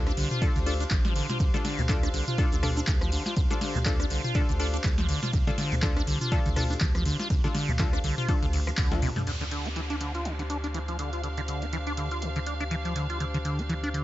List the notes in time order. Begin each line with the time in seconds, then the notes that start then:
Already playing: D2 D4 F4 G4 A4 C5 F5
0.07 D4, cross-stick, closed hi-hat, shaker
0.17 C2 D3, open hi-hat, ride
0.31 F4, closed hi-hat, mid tom, shaker
0.42 D3 D4 F4 A4, kick, closed hi-hat, ride, shaker
0.56 D2 D3, closed hi-hat, shaker
0.66 D4 F4 A4, open hi-hat, ride
0.80 D4, closed hi-hat, shaker
0.90 A1 E3, kick, clap, closed hi-hat, ride, shaker
1.05 F3, snare, closed hi-hat, shaker
1.16 D3, open hi-hat, ride
1.29 F4, snare, closed hi-hat, mid tom, shaker
1.39 D2 D3, kick, closed hi-hat, ride, shaker
1.54 D3 D4 F4 A4, snare, closed hi-hat, shaker
1.65 D3, snare, open hi-hat, ride
1.78 D2 D4, closed hi-hat, mid tom, shaker
1.89 E3 D4 F4 A4, kick, clap, closed hi-hat, ride, shaker
2.03 D4, cross-stick, closed hi-hat, shaker
2.14 C2 D3, open hi-hat, ride
2.27 F4, closed hi-hat, mid tom, shaker
2.38 D3 D4 F4 A4, kick, closed hi-hat, ride, shaker
2.52 D2 D3, closed hi-hat, shaker
2.63 D4 F4 A4, cross-stick, open hi-hat, mid tom, ride
2.77 D4, closed hi-hat, shaker
2.87 D2 E3, kick, clap, closed hi-hat, ride, shaker
3.01 F3, cross-stick, closed hi-hat, shaker
3.12 D3, open hi-hat, ride
3.25 F4, snare, shaker
3.36 D2 D3, kick, closed hi-hat, ride, shaker
3.50 D3 D4 F4 A4, snare, closed hi-hat, shaker
3.61 D3, snare, open hi-hat, ride
3.75 D2 D4, closed hi-hat, mid tom, shaker
3.85 E3 D4 F4 A4, kick, clap, closed hi-hat, ride, shaker
3.99 D4, cross-stick, closed hi-hat, shaker
4.10 C2 D3, open hi-hat, ride
4.24 F4, closed hi-hat, mid tom, shaker
4.35 D3 D4 F4 A4, kick, closed hi-hat, ride, shaker
4.49 D2 D3, closed hi-hat, shaker
4.60 D4 F4 A4, open hi-hat, ride
4.73 D4, closed hi-hat, shaker
4.84 D2 E3, kick, clap, closed hi-hat, ride, shaker
4.98 F3, snare, closed hi-hat, shaker
5.09 D3, open hi-hat, ride
5.23 F4, snare, closed hi-hat, mid tom, shaker
5.33 D2 D3, kick, closed hi-hat, ride, shaker
5.47 D3 D4 F4 A4, snare, closed hi-hat, shaker
5.58 D3, snare, open hi-hat, ride
5.72 D2 D4, closed hi-hat, mid tom, shaker
5.82 E3 D4 F4 A4, kick, clap, closed hi-hat, ride, shaker
5.96 D4, cross-stick, closed hi-hat, shaker
6.07 C2 D3, open hi-hat, ride
6.21 F4, closed hi-hat, mid tom, shaker
6.31 D3 D4 F4 A4, kick, closed hi-hat, ride, shaker
6.46 D2 D3, closed hi-hat, shaker
6.56 D4 F4 A4, cross-stick, open hi-hat, mid tom, ride
6.70 D4, closed hi-hat, shaker
6.80 D2 E3, kick, clap, closed hi-hat, ride, shaker
6.95 F3, cross-stick, closed hi-hat, shaker
7.05 D3, open hi-hat, ride
7.20 F4, snare, closed hi-hat, shaker
7.30 D2 D3, kick, closed hi-hat, ride, shaker
7.44 D3 D4 F4 A4, snare, closed hi-hat, shaker
7.55 D3, snare, open hi-hat, ride
7.69 D2 D4, closed hi-hat, mid tom, shaker
7.79 E3 D4 F4 A4, kick, clap, closed hi-hat, ride, shaker
7.93 D4, cross-stick, closed hi-hat, shaker
8.04 C2 D3, open hi-hat, ride
8.18 F4, closed hi-hat, mid tom, shaker
8.29 D3 D4 F4 A4, kick, closed hi-hat, ride, shaker
8.42 D2 D3, closed hi-hat, shaker
8.53 D2, open hi-hat, ride
8.67 F3, cross-stick, closed hi-hat, shaker
8.77 D2 D3, kick, clap, open hi-hat, ride, shaker
8.92 F3 D4 F4 A4, snare, closed hi-hat, high tom, shaker
9.02 C3, open hi-hat, mid tom, ride
9.16 F3, snare, closed hi-hat, mid tom, shaker
9.27 D2 D3 D4, closed hi-hat, crash, downlifter
9.41 D3 G4, closed hi-hat
9.51 D3, closed hi-hat
9.65 D4, closed hi-hat
9.71 C5
9.76 E3, closed hi-hat
9.85 F5
9.90 D4, closed hi-hat
10.01 D3, closed hi-hat
10.15 F4, closed hi-hat
10.25 D3, closed hi-hat
10.39 D3, closed hi-hat
10.50 D4, closed hi-hat
10.64 D4, closed hi-hat
10.74 E3, closed hi-hat
10.88 F3, closed hi-hat
10.99 D3, closed hi-hat
11.13 F4, closed hi-hat
11.24 D3, closed hi-hat
11.37 D3, closed hi-hat
11.48 D3, closed hi-hat
11.62 D4, closed hi-hat
11.73 E3, closed hi-hat
11.87 D4, closed hi-hat
11.97 D3, closed hi-hat
12.11 F4, closed hi-hat
12.22 D3, closed hi-hat
12.36 D3, closed hi-hat
12.46 D4, closed hi-hat
12.60 D4, closed hi-hat
12.71 E3, closed hi-hat
12.85 F3, closed hi-hat
12.96 D3, closed hi-hat
13.10 F4, closed hi-hat
13.20 D3, closed hi-hat
13.34 D3, closed hi-hat
13.45 D3, closed hi-hat
13.59 D4, closed hi-hat
13.70 E3, closed hi-hat
13.84 D4, closed hi-hat
13.94 D3, closed hi-hat